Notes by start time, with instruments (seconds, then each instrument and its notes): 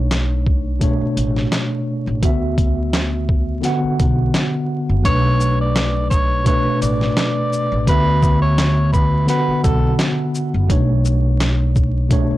Already playing: upright bass B1, tine electric piano B2 A3 D4 C#5
0.11 snare, clap, closed hi-hat
0.46 kick
0.79 tine electric piano B2 A3 D4, kick, closed hi-hat
0.83 tine electric piano C#5
1.01 muted upright bass stroke
1.17 upright bass A1, closed hi-hat
1.36 snare
1.52 snare, clap, closed hi-hat
2.07 upright bass A1
2.21 upright bass D2, tine electric piano D3 B3 F#4, kick, closed hi-hat
2.25 tine electric piano E5
2.58 kick, closed hi-hat
2.93 snare, clap, closed hi-hat
3.29 kick
3.61 tine electric piano D3 B3 F#4, snare, closed hi-hat
3.65 tine electric piano F#5
3.84 muted upright bass stroke
4.00 upright bass B1, kick, closed hi-hat
4.34 snare, clap, closed hi-hat
4.89 upright bass F#1
5.02 upright bass B1, tine electric piano B2 A3 D4, tenor saxophone C#5, kick, closed hi-hat
5.07 tine electric piano B4
5.40 shaker
5.61 tenor saxophone D5
5.76 snare, clap, closed hi-hat
6.10 tenor saxophone C#5, kick, shaker
6.44 tine electric piano B2 A3 D4, tenor saxophone C#5, kick, closed hi-hat
6.48 tine electric piano B4
6.66 muted upright bass stroke
6.81 upright bass A1, tenor saxophone D5, closed hi-hat, shaker
7.01 snare
7.17 snare, clap, closed hi-hat
7.53 shaker
7.72 upright bass A1
7.86 upright bass D2, tine electric piano D3 B3 F#4, tenor saxophone B4, kick, closed hi-hat
7.90 tine electric piano E5
8.23 kick, shaker
8.42 tenor saxophone C#5
8.58 snare, clap, closed hi-hat
8.92 tenor saxophone B4, kick, shaker
9.25 tine electric piano D3 B3 F#4, tenor saxophone B4, snare, closed hi-hat
9.30 tine electric piano F#5
9.48 muted upright bass stroke
9.64 upright bass B1, tenor saxophone A4, kick, closed hi-hat, shaker
9.99 snare, clap, closed hi-hat
10.35 shaker
10.54 upright bass F#1
10.67 upright bass B1, tine electric piano B2 A3 D4, kick, closed hi-hat
10.71 tine electric piano C#5
11.05 shaker
11.40 snare, clap, closed hi-hat
11.76 kick, shaker
12.09 tine electric piano B2 A3 D4, kick, closed hi-hat
12.13 tine electric piano C#5
12.31 muted upright bass stroke